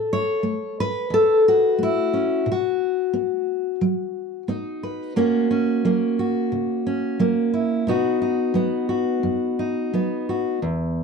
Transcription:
steel-string acoustic guitar
Already playing: A2 A4
0.13 C#5
0.43 A3
0.80 B4
1.10 E2 A4
1.48 F#4
1.78 A3
1.83 E4
2.13 C#4
2.46 B2
2.52 F#4
3.13 B3
3.81 F#3
4.48 B3 D#4
4.83 B4
5.16 F#2 A#3 C#4 F#4
5.51 C#4
5.85 F#3 A#3
6.19 F#4
6.52 C#3
6.87 C#4
7.19 F#3 A#3
7.54 E4
7.87 B2 B3 D#4 F#4
8.22 D#4
8.54 F#3 B3
8.89 F#4
9.23 F#2
9.59 D#4
9.94 F#3 B3
10.29 F#4
10.62 E2

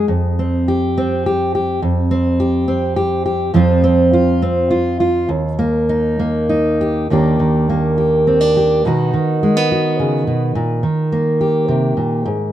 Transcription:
steel-string acoustic guitar
0.08 F2
0.39 C4
0.68 G4
0.98 C4
1.26 G4
1.55 G4
1.82 F2
2.11 C4
2.40 G4
2.68 C4
2.96 G4
3.26 G4
3.54 F2 F3 C4 F4
3.84 C4
4.13 F4
4.42 C4
4.71 F4
5.00 F4
5.29 D#2
5.59 A#3
5.89 D#4
6.19 A#3
6.49 D#4
6.81 G4
7.10 D#2 D#3 A#3 D4 G4
7.39 D#3
7.70 A#3
7.98 G4
8.27 C4
8.41 D4
8.57 G4
8.85 B2 D#3 B3 D#4 F#4
9.14 D#3
9.43 G#3
9.57 B3
9.72 F#4
9.99 C#3
10.27 B2
10.55 A#2
10.83 D#3
11.12 A#3
11.41 G4
11.68 C3
11.97 A#2
12.26 G#2

